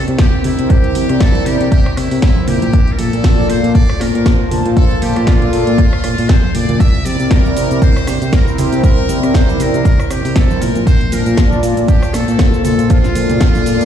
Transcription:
0.06 C3 C4 E4 A#4 C5, closed hi-hat
0.19 C2 G4, kick, snare, closed hi-hat
0.44 C3 E4, open hi-hat, low conga
0.59 C3, closed hi-hat
0.70 C2 G4, kick, closed hi-hat
0.84 closed hi-hat
0.94 C3 C4 E4 A#4 D5, open hi-hat, high conga
1.09 C3, cross-stick, closed hi-hat
1.20 C2 A4, kick, snare, closed hi-hat
1.34 closed hi-hat, high conga
1.46 C3 C4 E4 G4 A#4 D5, open hi-hat
1.61 C3, closed hi-hat, high bongo
1.71 C2 G4, kick, closed hi-hat
1.86 cross-stick
1.97 C3 E4, cross-stick, open hi-hat
2.10 C3 C4 E4 A#4 C5, open hi-hat
2.22 C2 E4, kick, snare, closed hi-hat
2.36 high conga
2.48 A#2 G4, open hi-hat, low conga
2.62 A#2, closed hi-hat, high conga
2.73 A#1, kick, closed hi-hat
2.87 closed hi-hat
2.92 A#4
2.98 A#2 A#3 F4 A4 D5, open hi-hat, high bongo, high conga
3.13 A#2, closed hi-hat
3.24 A#1, kick, snare, closed hi-hat
3.39 high conga
3.48 A#2 A#3 F4 A4 C5 D5, open hi-hat
3.63 A#2, closed hi-hat
3.74 A#1 D5, kick, closed hi-hat
3.89 cross-stick
4.00 A#2 A#4, cross-stick, snare, open hi-hat, high bongo
4.13 A#2 A#3 F4 C5 A5, closed hi-hat
4.26 A#1, kick, snare, closed hi-hat
4.51 A#2, open hi-hat, low conga
4.65 A#2, closed hi-hat
4.77 A#1 A4, kick, closed hi-hat
4.91 closed hi-hat
5.02 A#2 A#3 F4 G4 A4 D5, open hi-hat, high bongo, high conga
5.16 A#2, cross-stick, closed hi-hat
5.27 A#1 F4, kick, snare, closed hi-hat
5.42 closed hi-hat, high conga
5.53 A#2 A#3 F4 A4 D5, open hi-hat
5.67 A#2, closed hi-hat, high bongo
5.78 A#1, kick, closed hi-hat
5.93 cross-stick
6.04 A#2, cross-stick, open hi-hat, high bongo
6.18 A#2, open hi-hat
6.29 A#1 C5, kick, snare, closed hi-hat
6.44 high conga
6.54 A#2 A#3 F4 A4 D5, open hi-hat, low conga
6.69 A#2, closed hi-hat, high conga, low conga
6.80 C2 E5, kick, closed hi-hat, shaker
6.95 closed hi-hat
7.05 C3 C4 E4 A#4 D5, open hi-hat, high bongo, high conga, shaker
7.20 C3, closed hi-hat, shaker
7.31 C2 A#4, kick, snare, closed hi-hat, shaker
7.45 high conga, shaker
7.56 C3 C4 E4 A#4 D5, open hi-hat, shaker
7.71 C3, closed hi-hat, shaker
7.82 C2 C5, kick, closed hi-hat, shaker
7.96 cross-stick, shaker
8.07 C3 C5, cross-stick, snare, open hi-hat, high bongo, shaker
8.21 C3 C4 E4 A#4 C5, closed hi-hat, shaker
8.33 C2 A#4, kick, snare, closed hi-hat, shaker
8.48 shaker
8.58 C3 G4, open hi-hat, low conga, shaker
8.72 C3, closed hi-hat, shaker
8.83 C2 A#4, kick, closed hi-hat, shaker
8.98 closed hi-hat
9.08 C3 C4 E4 A#4 D5, open hi-hat, high conga, shaker
9.23 C3, cross-stick, closed hi-hat, shaker
9.34 C2 C5, kick, snare, closed hi-hat, shaker
9.49 closed hi-hat, high conga, shaker
9.59 C3 C4 E4 A#4 D5, open hi-hat, shaker
9.74 C3, closed hi-hat, high bongo, shaker
9.85 C2 A#4, kick, closed hi-hat, shaker
10.00 cross-stick, shaker
10.10 C3 G4, cross-stick, open hi-hat, shaker
10.24 C3 C4 E4 A#4 C5, open hi-hat, shaker
10.36 C2 A4, kick, snare, closed hi-hat, shaker
10.51 high conga, shaker
10.61 A#2 A#4, open hi-hat, low conga, shaker
10.75 A#2, closed hi-hat, high conga, shaker
10.87 A#1 C5, kick, closed hi-hat, shaker
11.01 closed hi-hat
11.11 A#2 A#3 F4 A#4 D5 A5, open hi-hat, high bongo, high conga, shaker
11.26 A#2, closed hi-hat, shaker
11.37 A#1, kick, snare, closed hi-hat, shaker
11.52 high conga, shaker
11.63 A#2 A#3 F4 A4 D5, open hi-hat, shaker
11.77 A#2, closed hi-hat, shaker
11.88 A#1 G4, kick, closed hi-hat, shaker
12.03 cross-stick, shaker
12.13 A#2 A4, cross-stick, snare, open hi-hat, high bongo, shaker
12.27 A#2 A#3 F4 A4 C5, closed hi-hat, shaker
12.39 A#1, kick, snare, closed hi-hat, shaker
12.54 shaker
12.64 A#2 A4, open hi-hat, low conga, shaker
12.78 A#2, closed hi-hat, shaker
12.90 A#1 F4, kick, closed hi-hat, shaker
13.04 snare, closed hi-hat, shaker
13.15 A#2 A#3 F4 A4 D5, open hi-hat, high conga, shaker
13.29 A#2, closed hi-hat, low conga, shaker
13.41 A#1, kick, snare, closed hi-hat, shaker
13.55 closed hi-hat, high conga, shaker
13.66 A#2 A#3 F4 A4 D5, open hi-hat, shaker
13.80 A#2, closed hi-hat, high bongo, shaker

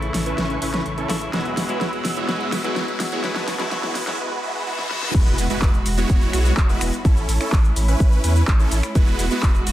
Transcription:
Already playing: C#3 E3 A3 E4 A4 E5 C#6, riser
0.02 closed hi-hat
0.14 A1, snare, open hi-hat
0.26 C#4 E4 B4, closed hi-hat
0.38 A1, snare, closed hi-hat
0.50 closed hi-hat
0.62 A1 C#4 E4 B4, open hi-hat
0.74 snare, closed hi-hat
0.86 A1, closed hi-hat
0.98 C#4 E4 A4, closed hi-hat
1.09 A1 C#3 E3 A3 E4, snare, open hi-hat
1.21 closed hi-hat
1.33 E1 B2 F#3 G#3 B3 E4 F#4 G#4 B4 F#5 E6, snare, closed hi-hat
1.45 E1, closed hi-hat
1.57 E1, snare, open hi-hat
1.68 B2 F#3 G#3 B3 E4 F#4 B4, closed hi-hat
1.81 E1, snare, closed hi-hat
1.93 closed hi-hat
2.05 E1, snare, open hi-hat
2.17 G#3 B3 E4 F#4 C#5, closed hi-hat
2.28 E1 B2 F#3 G#3 B3 E4 F#4 B4, snare, closed hi-hat
2.41 closed hi-hat
2.52 E1, snare, open hi-hat
2.63 B2 F#3 G#3 B3 E4 F#4 B4, closed hi-hat
2.76 E1, snare, closed hi-hat
2.88 closed hi-hat
3.00 E1, snare, open hi-hat
3.12 G#3 B3 E4 F#4 C#5, closed hi-hat
3.23 F#1 B2 F#3 G#3 B3 E4 F#4 B4 F#5 A5 C#6, snare, closed hi-hat
3.36 F#1, snare, closed hi-hat
3.48 F#1, snare, open hi-hat
3.58 B2 F#3 G#3 B3 E4 F#4 B4, snare, closed hi-hat
3.71 F#1 B2 F#3 G#3 B3 E4 F#4 B4, snare, closed hi-hat
3.83 snare, closed hi-hat
3.95 F#1, snare, open hi-hat
4.06 B2 F#3 G#3 B3 E4 F#4 B4, snare
4.19 G#3 B3 E4 F#4 B4, reverse cymbal
4.43 G#3 B3 E4 F#4 B4
4.67 G#3 B3 E4 F#4 B4
4.79 snare
4.90 G#3 B3 E4 F#4 B4, snare
5.03 snare
5.14 E1 G#3 B3 E4 F#4 B4, kick, closed hi-hat, crash, impact, shaker
5.26 E1, closed hi-hat, shaker
5.38 E1, open hi-hat, shaker
5.50 G#3 B3 E4 F#4 B4, closed hi-hat, shaker
5.62 E1, kick, clap, closed hi-hat, shaker
5.74 closed hi-hat, shaker
5.86 E1, open hi-hat, shaker
5.98 G#3 B3 E4 F#4 C#5, closed hi-hat, shaker
6.10 E1, kick, closed hi-hat, shaker
6.22 closed hi-hat, shaker
6.33 B1 G#3 B3 E4 F#4 C#5, finger snap, open hi-hat, shaker
6.45 closed hi-hat, shaker
6.57 E1, kick, clap, closed hi-hat, shaker
6.69 G#3 B3 E4 F#4 B4, closed hi-hat, shaker
6.81 E1, finger snap, open hi-hat, shaker
6.93 closed hi-hat, shaker
7.05 A1 A3 C#4 E4 A4, kick, closed hi-hat, shaker
7.17 A1, closed hi-hat, shaker
7.29 A1, open hi-hat, shaker
7.41 C#4 E4 A4, finger snap, closed hi-hat, shaker
7.52 A1, kick, clap, closed hi-hat, shaker
7.65 closed hi-hat, shaker
7.76 A1, open hi-hat, shaker
7.88 C#4 E4 B4, closed hi-hat, shaker
8.00 A1, kick, closed hi-hat, shaker
8.12 closed hi-hat, shaker
8.24 E2 C#4 E4 B4, open hi-hat, shaker
8.36 closed hi-hat, shaker
8.48 A1, kick, clap, closed hi-hat, shaker
8.60 C#4 E4 A4, closed hi-hat, shaker
8.71 A1, open hi-hat, shaker
8.83 finger snap, closed hi-hat, shaker
8.95 E1 G#3 B3 E4 F#4 B4, kick, closed hi-hat, shaker
9.07 E1, closed hi-hat, shaker
9.19 E1, open hi-hat, shaker
9.31 G#3 B3 E4 F#4 B4, closed hi-hat, shaker
9.43 E1, kick, clap, closed hi-hat, shaker
9.55 closed hi-hat, shaker
9.67 E1, open hi-hat, shaker

